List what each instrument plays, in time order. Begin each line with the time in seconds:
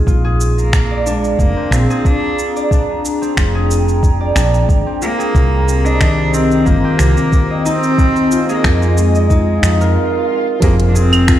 Already playing: harp C4 D#4 G#4 D#5
0.06 fretless electric bass A#1, ambient pad D4 G#4 F5 A#5, harp F4, kick, shaker
0.24 harp G#4
0.41 shaker
0.58 cello A#3, shaker
0.73 finger snap, kick, shaker
0.91 harp D5
1.06 cello G#3, harp D4, shaker
1.24 shaker
1.39 fretless electric bass F1, cello A#3, kick, shaker
1.57 harp C4
1.71 fretless electric bass A#1, cello C4, harp F4, finger snap, shaker
1.90 harp G#4, shaker
2.05 cello D4, kick, shaker
2.39 shaker
2.56 harp D5, shaker
2.71 harp D4, ambient pad G5, kick, shaker
3.05 shaker
3.21 harp C4, shaker
3.37 fretless electric bass F1, harp F4, finger snap, kick, shaker
3.55 harp G#4
3.71 shaker
3.88 shaker
4.03 kick, shaker
4.21 harp D5
4.36 fretless electric bass A#1, harp D4, finger snap, shaker
4.54 shaker
4.69 fretless electric bass G#1, kick, shaker
4.86 harp C4
5.02 cello A#3, harp F4, shaker
5.18 harp G#4, shaker
5.35 fretless electric bass C2, ambient pad C4 G4 C5, kick, shaker
5.68 shaker
5.85 cello D4, harp D#5, shaker
6.00 harp D#3, finger snap, kick, shaker
6.34 cello C4, shaker
6.51 harp C4, shaker
6.66 fretless electric bass G1, cello A#3, harp F4, kick, shaker
6.84 harp G4
6.99 fretless electric bass C2, finger snap, shaker
7.17 shaker
7.32 kick, shaker
7.50 harp D#5
7.65 cello C4, harp D#4, shaker
7.83 shaker
7.98 ambient pad F4 D#5 G#5, kick, shaker
8.16 harp C4, shaker
8.32 harp F4, shaker
8.49 cello A#3, harp G#4, shaker
8.64 fretless electric bass F2, finger snap, kick, shaker
8.82 shaker
8.97 cello G#3, shaker
9.15 harp D#5, shaker
9.30 harp D#4, kick, swell, shaker
9.63 fretless electric bass F2, harp D#4, finger snap, shaker
9.81 harp A#4, shaker
10.60 fretless electric bass F2, felt piano F3 C4, cello A#3, harp F4, kick, closed hi-hat, impact, shaker
10.64 felt piano G#4
10.80 closed hi-hat
10.89 cello D4
10.95 cello C4, harp G#4, shaker
11.13 claves, shaker
11.28 harp F4, finger snap, kick, closed hi-hat, shaker